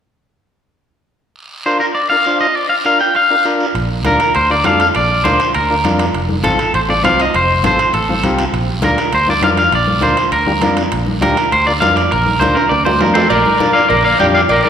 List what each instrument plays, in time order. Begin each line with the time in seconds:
1.36 long guiro
1.66 transistor combo organ D4 F4 A#4, clean electric guitar C5, short guiro
1.80 clean electric guitar A#4, short guiro
1.95 clean electric guitar D5, long guiro
2.10 transistor combo organ D4 F4 A#4, clean electric guitar F5
2.24 transistor combo organ D4 F4 C5, short guiro
2.40 clean electric guitar D#5, short guiro
2.55 clean electric guitar D5, long guiro
2.69 clean electric guitar F5
2.85 transistor combo organ D4 F4 A#4, clean electric guitar F5, short guiro
2.99 clean electric guitar G5, short guiro
3.15 clean electric guitar F5, long guiro
3.30 transistor combo organ D4 F4 A#4
3.45 transistor combo organ D4 F4 A#4, short guiro
3.60 short guiro
3.75 fingered electric bass A#1, high conga, high timbale, long guiro
4.05 fingered electric bass D2, transistor combo organ D4 F4 A#4, clean electric guitar A#4, high conga, high timbale, short guiro
4.20 high timbale, short guiro
4.35 fingered electric bass D2, clean electric guitar C5, high conga, high timbale, long guiro
4.50 transistor combo organ D4 F4 A#4, clean electric guitar D5
4.64 fingered electric bass F2, transistor combo organ D4 F4 A4, clean electric guitar F5, high conga, high timbale, low timbale, short guiro
4.80 clean electric guitar F5, high timbale, short guiro
4.95 fingered electric bass A#1, clean electric guitar D5, high conga, high timbale, long guiro
5.24 fingered electric bass D2, transistor combo organ D4 F4 A#4, clean electric guitar C5, high conga, high timbale, short guiro
5.40 high timbale, short guiro
5.54 fingered electric bass D2, clean electric guitar A#4, high conga, high timbale, long guiro
5.70 transistor combo organ D4 F4 A#4
5.84 fingered electric bass F2, transistor combo organ D4 F4 A#4, high conga, high timbale, short guiro
5.99 high timbale, short guiro
6.14 fingered electric bass F1, high conga, high timbale, long guiro
6.29 high conga
6.43 fingered electric bass A1, transistor combo organ C4 F4 A4, clean electric guitar A4, high conga, high timbale, short guiro
6.59 high timbale, short guiro
6.74 fingered electric bass A1, clean electric guitar C5, high conga, high timbale, long guiro
6.88 transistor combo organ C4 F4 A4, clean electric guitar D5, high conga
7.03 fingered electric bass C2, transistor combo organ C4 F4 C5, clean electric guitar F5, high conga, high timbale, low timbale, short guiro
7.20 clean electric guitar D#5, high timbale, short guiro
7.34 fingered electric bass F1, clean electric guitar C5, high conga, high timbale, long guiro
7.63 fingered electric bass A1, transistor combo organ C4 F4 A4, clean electric guitar C5, high conga, high timbale, short guiro
7.79 high timbale, short guiro
7.93 fingered electric bass A1, clean electric guitar A4, high conga, high timbale, long guiro
8.09 transistor combo organ C4 F4 C5, high conga
8.23 fingered electric bass C2, transistor combo organ C4 F4 G4, high conga, high timbale, short guiro
8.39 high timbale, short guiro
8.52 fingered electric bass A#1, high conga, high timbale, long guiro
8.82 fingered electric bass D2, transistor combo organ D4 F4 A#4, clean electric guitar A#4, high conga, high timbale, short guiro
8.98 high timbale, short guiro
9.12 fingered electric bass D2, clean electric guitar C5, high conga, high timbale, long guiro
9.27 transistor combo organ D4 F4 A#4, clean electric guitar D5, high conga
9.42 fingered electric bass F2, transistor combo organ D4 F4 A#4, clean electric guitar F5, high conga, high timbale, low timbale, short guiro
9.57 clean electric guitar F5, high timbale, short guiro
9.71 fingered electric bass A#1, clean electric guitar D5, high conga, high timbale, long guiro
9.87 high conga
10.01 fingered electric bass D2, transistor combo organ D4 F4 A#4, clean electric guitar C5, high conga, high timbale, short guiro
10.17 high timbale, short guiro
10.31 fingered electric bass D2, clean electric guitar A#4, high conga, high timbale, long guiro
10.46 transistor combo organ D4 F4 G4, high conga
10.62 fingered electric bass F2, transistor combo organ D4 F4 A#4, high conga, high timbale, short guiro
10.77 high timbale, short guiro
10.92 fingered electric bass A#1, high conga, high timbale, long guiro
11.06 high conga
11.21 fingered electric bass D2, transistor combo organ D4 F4 G4, clean electric guitar A#4, high conga, high timbale, short guiro
11.37 high timbale, short guiro
11.52 fingered electric bass D2, clean electric guitar C5, high conga, high timbale, long guiro
11.67 transistor combo organ D4 F4 A#4, clean electric guitar D5
11.80 fingered electric bass F2, transistor combo organ D4 F4 A#4, clean electric guitar F5, high conga, high timbale, low timbale, short guiro
11.96 clean electric guitar D5, high timbale, short guiro
12.11 fingered electric bass A#1, clean electric guitar A#4, high conga, high timbale, long guiro
12.26 high conga
12.40 fingered electric bass D2, transistor combo organ D4 F4 A#4, clean electric guitar C5, high conga, high timbale, short guiro
12.55 clean electric guitar A#4, high timbale, short guiro
12.69 fingered electric bass D2, clean electric guitar D5, high conga, high timbale, long guiro
12.85 transistor combo organ D4 F4 A#4, clean electric guitar C5, high conga, low timbale
13.00 fingered electric bass F2, transistor combo organ D4 F4 A#4, clean electric guitar A#4, high conga, low timbale, short guiro
13.14 clean electric guitar A4 C5, clarinet A4, low timbale, short guiro
13.30 fingered electric bass A#1, clean electric guitar A#4 D5, clarinet A#4, cowbell, high conga, long guiro
13.46 high conga
13.60 transistor combo organ D4 F4 A#4, high conga, short guiro
13.73 clean electric guitar D5 F5, clarinet D5, short guiro
13.89 fingered electric bass A#1, clarinet A#4, clean electric guitar A#4 D5, cowbell, high conga, low conga, long guiro
14.05 clean electric guitar D5 F5, clarinet D5
14.19 fingered electric bass F2, transistor combo organ D4 F4 G4, clarinet D5, clean electric guitar D5 G5, high conga, short guiro
14.34 clarinet D5, clean electric guitar D5 F5, short guiro
14.49 fingered electric bass A#1, clarinet A#4, clean electric guitar A#4 D5, cowbell, high conga, long guiro
14.63 clarinet A#4, clean electric guitar A#4 D5, high conga